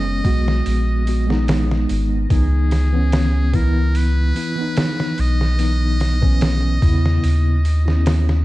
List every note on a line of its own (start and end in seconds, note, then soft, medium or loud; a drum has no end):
0.00 0.21 F#1 loud
0.00 0.19 G#3 loud
0.00 0.20 B3 medium
0.00 0.21 C#4 loud
0.00 1.90 D#5 loud
0.24 0.61 B1 medium
0.24 1.02 G#3 medium
0.24 1.02 B3 medium
0.24 1.03 F#4 loud
0.24 kick medium
0.24 open hi-hat medium
0.48 snare soft
0.66 1.86 A#1 medium
0.66 open hi-hat medium
1.06 1.23 G#3 medium
1.06 1.24 B3 medium
1.06 1.25 F#4 medium
1.06 open hi-hat medium
1.26 2.24 G#3 medium
1.26 2.26 B3 medium
1.26 snare soft
1.32 2.27 D#4 loud
1.48 snare loud
1.48 open hi-hat medium
1.71 snare soft
1.89 2.26 G#1 medium
1.89 open hi-hat medium
2.29 4.32 C#2 medium
2.29 2.87 E3 medium
2.29 2.88 B3 medium
2.29 2.89 D#4 medium
2.29 3.57 G#4 medium
2.29 kick loud
2.29 open hi-hat medium
2.71 snare medium
2.71 open hi-hat medium
2.92 3.48 E3 loud
2.92 3.49 B3 medium
2.92 3.50 C#4 loud
3.12 snare loud
3.12 open hi-hat medium
3.53 4.31 E3 medium
3.53 4.31 B3 medium
3.53 4.32 E4 loud
3.53 3.98 A#4 loud
3.53 kick medium
3.53 open hi-hat medium
3.95 5.22 B4 loud
3.95 open hi-hat medium
4.35 4.52 E3 medium
4.35 4.53 B3 medium
4.35 4.53 E4 medium
4.35 open hi-hat medium
4.55 5.53 E3 medium
4.55 5.55 B3 medium
4.61 5.56 D#4 loud
4.77 snare loud
4.77 open hi-hat medium
5.00 snare soft
5.18 6.79 B1 loud
5.18 8.45 D#5 loud
5.18 open hi-hat medium
5.41 snare soft
5.58 6.16 E3 medium
5.58 6.17 B3 medium
5.58 6.18 D#4 medium
5.58 open hi-hat medium
6.00 snare soft
6.00 open hi-hat medium
6.21 6.77 E3 loud
6.21 6.78 B3 medium
6.21 6.79 C#4 loud
6.21 kick medium
6.41 snare loud
6.41 open hi-hat medium
6.81 7.19 E2 medium
6.81 7.59 C#3 medium
6.81 7.60 B3 medium
6.81 7.61 E4 loud
6.81 kick medium
6.81 open hi-hat medium
7.06 snare soft
7.24 8.43 D#2 medium
7.24 open hi-hat medium
7.65 open hi-hat medium
7.85 8.42 B3 medium
7.85 8.43 C#4 medium
7.85 8.41 E4 medium
7.85 snare soft
8.06 snare loud
8.06 open hi-hat medium
8.29 snare soft